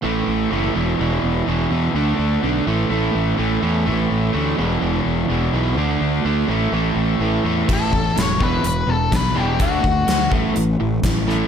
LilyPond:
<<
  \new Staff \with { instrumentName = "Lead electric guitar" } { \time 4/4 \key a \dorian \tempo 4 = 125 r1 | r1 | r1 | r1 |
a'4 cis''8 b'8 b'8 a'8 b'8 g'8 | fis'4. r2 r8 | }
  \new Staff \with { instrumentName = "Distorted electric guitar" } { \clef bass \time 4/4 \key a \dorian <a, e a>4 <a, e a>8 <e, b, e>8 <e, b, e>4 <e, b, e>8 <e, b, e>8 | <d a d'>4 <d a d'>8 <a, e a>8 <a, e a>4 <a, e a>8 <a, e a>8 | <a, e a>4 <a, e a>8 <e, b, e>8 <e, b, e>4 <e, b, e>8 <e, b, e>8 | <d a d'>4 <d a d'>8 <a, e a>8 <a, e a>4 <a, e a>8 <a, e a>8 |
<a, e a>8 <a, e>8 <a, e>8 <e, b, e>8 <e, b,>8 <e, b,>8 <e, b,>8 <e, b, e>8 | <d a d'>8 <d a>8 <d a>8 <a, e a>8 <a, e>8 <a, e>8 <a, e>8 <a, e a>8 | }
  \new Staff \with { instrumentName = "Overdriven electric guitar" } { \clef bass \time 4/4 \key a \dorian <a, e a>4 <a, e a>8 <e, b, e>8 <e, b, e>4 <e, b, e>8 <e, b, e>8 | <d a d'>4 <d a d'>8 <a, e a>8 <a, e a>4 <a, e a>8 <a, e a>8 | <a, e a>4 <a, e a>8 <e, b, e>8 <e, b, e>4 <e, b, e>8 <e, b, e>8 | <d a d'>4 <d a d'>8 <a, e a>8 <a, e a>4 <a, e a>8 <a, e a>8 |
<a, e a>8 <a, e>8 <a, e>8 <e, b, e>8 <e, b,>8 <e, b,>8 <e, b,>8 <e, b, e>8 | <d a d'>8 <d a>8 <d a>8 <a, e a>8 <a, e>8 <a, e>8 <a, e>8 <a, e a>8 | }
  \new Staff \with { instrumentName = "Fingered electric bass" } { \clef bass \time 4/4 \key a \dorian a,,8 a,,8 fis,,8 e,,8 e,,8 e,,8 e,,8 e,8 | d,8 d,8 b,,8 a,,8 a,,8 a,,8 a,,8 e,8 | a,,8 a,,8 d,8 e,,8 e,,8 e,,8 e,,8 b,,8 | d,8 d,8 d,8 a,,8 a,,8 a,,8 a,,8 e,8 |
a,,4 e,,8 e,,8 e,,8 e,,8 b,,8 e,,8 | d,8 d,8 d,8 a,,8 a,,8 a,,8 a,,4 | }
  \new DrumStaff \with { instrumentName = "Drums" } \drummode { \time 4/4 r4 r4 r4 r4 | r4 r4 r4 r4 | r4 r4 r4 r4 | r4 r4 r4 r4 |
<cymc bd>8 bd8 <hh sn>8 bd8 hh4 <hh bd sn>4 | <hh bd>8 bd8 <hh sn>8 bd8 hh4 <hh bd sn>8 sn8 | }
>>